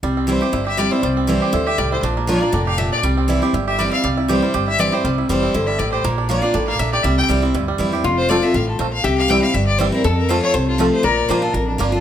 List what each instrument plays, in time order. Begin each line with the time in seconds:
0.03 upright bass C2, steel-string acoustic guitar C3, five-string banjo G3
0.17 five-string banjo C4
0.27 steel-string acoustic guitar E3 G3 C4 E4, five-string banjo E4, fiddle C5
0.41 steel-string acoustic guitar C4 E4, five-string banjo G4
0.53 upright bass G1, steel-string acoustic guitar G2, five-string banjo E4
0.66 five-string banjo G4, fiddle E5
0.77 steel-string acoustic guitar E3 G3 C4 E4, five-string banjo G3, fiddle D5
0.91 steel-string acoustic guitar C4 E4, five-string banjo E4, fiddle C5
1.03 upright bass C2, steel-string acoustic guitar C3, five-string banjo G3
1.17 five-string banjo C4
1.27 steel-string acoustic guitar E3 G3 C4 E4, five-string banjo E4, fiddle C5
1.42 five-string banjo G4
1.53 upright bass D2, steel-string acoustic guitar D3, five-string banjo E4
1.66 five-string banjo G4, fiddle E5
1.78 upright bass C2, steel-string acoustic guitar A2, five-string banjo G3, fiddle D5
1.92 five-string banjo E4, fiddle C5
2.03 upright bass A#1, steel-string acoustic guitar A#2, five-string banjo D4
2.17 five-string banjo A#3
2.27 steel-string acoustic guitar F3 A#3 D4 F4, five-string banjo D4, fiddle D5
2.40 five-string banjo A#3, steel-string acoustic guitar D4 F4
2.53 upright bass F1, steel-string acoustic guitar A2, five-string banjo D4
2.66 five-string banjo G4, fiddle F5
2.78 steel-string acoustic guitar A#2, five-string banjo D4, fiddle E5
2.92 five-string banjo D4, fiddle D5
3.03 upright bass C2, steel-string acoustic guitar C3, five-string banjo G3
3.17 five-string banjo C4
3.28 steel-string acoustic guitar E3 G3 C4 E4, five-string banjo E4
3.42 steel-string acoustic guitar C4 E4, five-string banjo G4
3.53 upright bass G1, steel-string acoustic guitar G2, five-string banjo E4
3.68 five-string banjo G4, fiddle E5
3.79 steel-string acoustic guitar E3 G3 C4 E4, five-string banjo G3, fiddle D5
3.92 steel-string acoustic guitar C4 E4, five-string banjo E4, fiddle F5
4.04 upright bass C2, steel-string acoustic guitar C3, five-string banjo G3
4.17 five-string banjo E4
4.28 steel-string acoustic guitar E3 G3 C4 E4, five-string banjo G4, fiddle C5
4.42 five-string banjo G3, steel-string acoustic guitar C4 E4
4.54 upright bass G1, steel-string acoustic guitar G2, five-string banjo G4
4.68 five-string banjo E4, fiddle E5
4.79 steel-string acoustic guitar E3 G3 C4 E4, five-string banjo C4, fiddle D5
4.92 steel-string acoustic guitar C4 E4, five-string banjo G4, fiddle C5
5.04 upright bass C2, steel-string acoustic guitar C3, five-string banjo G3
5.18 five-string banjo E4
5.29 upright bass F1, steel-string acoustic guitar E3 G3 C4 E4, five-string banjo G3, fiddle C5
5.43 five-string banjo C4
5.54 upright bass G1, steel-string acoustic guitar D3, five-string banjo E4
5.67 five-string banjo G3, fiddle E5
5.79 upright bass A1, steel-string acoustic guitar A2, five-string banjo E4, fiddle D5
5.92 five-string banjo G4, fiddle C5
6.04 upright bass A#1, steel-string acoustic guitar A#2, five-string banjo A#3
6.18 five-string banjo D4
6.29 steel-string acoustic guitar F3 A#3 D4 F4, five-string banjo A#3, fiddle D5
6.42 five-string banjo D4, steel-string acoustic guitar D4 F4
6.54 upright bass A1, steel-string acoustic guitar A2, five-string banjo D4
6.68 five-string banjo A#3, fiddle F5
6.79 upright bass A#1, steel-string acoustic guitar A#2, five-string banjo D4, fiddle E5
6.92 five-string banjo G4, fiddle D5
7.03 upright bass C2, steel-string acoustic guitar C3, five-string banjo G3, fiddle E5
7.18 five-string banjo E4, fiddle G5
7.28 upright bass C2, steel-string acoustic guitar E3 G3 C4 E4, five-string banjo G3
7.42 five-string banjo C4, steel-string acoustic guitar C4 E4
7.54 upright bass D2, steel-string acoustic guitar G2, five-string banjo E4
7.68 five-string banjo G3
7.78 upright bass E2, steel-string acoustic guitar E3 G3 C4 E4, five-string banjo E4
7.92 steel-string acoustic guitar C4 E4, five-string banjo G4
8.04 upright bass F1, steel-string acoustic guitar F2, resonator guitar played with a steel bar F4
8.18 fiddle C5
8.29 steel-string acoustic guitar F3 A3 C4 F4, five-string banjo A3 C4 F4, fiddle D5
8.42 steel-string acoustic guitar C4 F4, fiddle E5
8.54 upright bass A1, steel-string acoustic guitar A2, fiddle F5
8.69 fiddle A4
8.79 upright bass A#1, steel-string acoustic guitar A#2, five-string banjo A3 C4 F4, fiddle C5
8.93 fiddle F5
9.04 upright bass C2, steel-string acoustic guitar C3, resonator guitar played with a steel bar G4, fiddle E5
9.18 fiddle F5
9.28 steel-string acoustic guitar E3 G3 C4 E4, five-string banjo G3 C4 E4, fiddle G5
9.42 steel-string acoustic guitar C4 E4, fiddle F5
9.54 upright bass G1, steel-string acoustic guitar G2, fiddle E5
9.67 fiddle D5
9.79 steel-string acoustic guitar E3 G3 C4 E4, five-string banjo G3 C4 E4, fiddle C5
9.91 steel-string acoustic guitar C4 E4, fiddle A#4
10.04 upright bass F2, steel-string acoustic guitar F2, resonator guitar played with a steel bar A4, fiddle A4
10.17 fiddle A#4
10.29 steel-string acoustic guitar F3 A3 C4 F4, five-string banjo A3 C4 F4, fiddle C5
10.42 fiddle C#5
10.54 upright bass C2, steel-string acoustic guitar C3, fiddle C5
10.68 fiddle F4
10.78 steel-string acoustic guitar F3 A3 C4 F4, five-string banjo A3 C4 F4, fiddle A4
10.92 fiddle C5
11.03 upright bass A#1, steel-string acoustic guitar A#2, resonator guitar played with a steel bar A#4, fiddle D5
11.29 upright bass A#1, steel-string acoustic guitar F3 A#3 D4 F4, five-string banjo A#3 D4, fiddle C5
11.42 steel-string acoustic guitar D4 F4, fiddle A4
11.53 upright bass A1, steel-string acoustic guitar F2, fiddle A#4
11.67 fiddle D4
11.78 upright bass G1, steel-string acoustic guitar F3 A#3 D4 F4, five-string banjo A#3 D4, fiddle F4
11.92 steel-string acoustic guitar D4 F4, fiddle A4